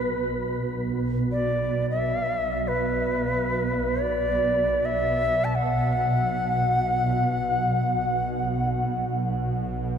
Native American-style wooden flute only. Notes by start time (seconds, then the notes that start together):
Already playing: B4
1.32 D5
1.91 E5
2.68 B4
4.00 D5
4.85 E5
5.44 A5
5.55 F#5